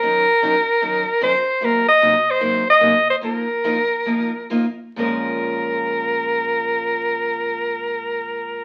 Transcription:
X:1
M:4/4
L:1/8
Q:"Swing" 1/4=138
K:Bbm
V:1 name="Soprano saxophone"
B6 c2 | B e2 c2 e2 c | B6 z2 | B8- |
B8 |]
V:2 name="Steel-string acoustic guitar"
[E,G,DEB] z [E,G,DEB] z [E,G,DEB] z [E,G,DEB] z | [C,G,B,EB] z [C,G,B,EB] z [C,G,B,EB] z [C,G,B,EB] z | [F,B,EFB] z [F,B,EFB] z [F,B,EFB] z [F,B,EFB] z | [B,,F,A,DFB]8- |
[B,,F,A,DFB]8 |]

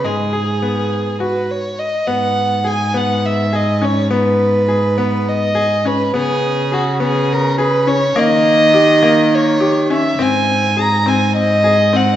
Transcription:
X:1
M:7/8
L:1/8
Q:1/4=103
K:G#m
V:1 name="Violin"
G4 B c d | f2 g f e d c | B4 d2 B | G2 F G A B c |
d4 c2 e | g2 a g d2 f |]
V:2 name="Grand piano"
G, G B,2 F z2 | B,2 G B,2 G C | B,2 G B,2 G C | B,2 G B,2 G C |
A,2 =G A,2 G C | ^B,2 G B,2 G B, |]
V:3 name="Cello" clef=bass
G,,4- G,, z2 | G,,6- G,,- | G,,6- G,, | C,6- C, |
D,6- D, | G,,6- G,, |]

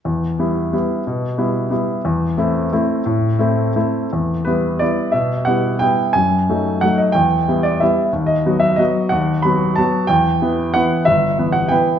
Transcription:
X:1
M:3/4
L:1/8
Q:1/4=180
K:Em
V:1 name="Grand piano"
z6 | z6 | z6 | z6 |
z2 B2 d2 | e2 f2 g2 | ^g4 f ^d | g3 d e2 |
z ^d2 e d2 | f2 b2 a2 | g4 f2 | e3 f g2 |]
V:2 name="Grand piano"
E,,2 [G,B,E]2 [G,B,E]2 | B,,2 [G,B,E]2 [G,B,E]2 | E,,2 [A,CE]2 [A,CE]2 | A,,2 [A,CE]2 [A,CE]2 |
E,,2 [G,B,E]2 [G,B,E]2 | B,,2 [G,B,E]2 [G,B,E]2 | F,,2 [F,A,^D]2 [F,A,D]2 | E,,2 [G,B,E]2 [G,B,E]2 |
^D,,2 [F,B,F]2 [F,B,F]2 | ^D,,2 [F,B,F]2 [F,B,F]2 | E,,2 [E,B,B]2 [E,B,B]2 | G,,,2 [E,B,B]2 [E,B,B]2 |]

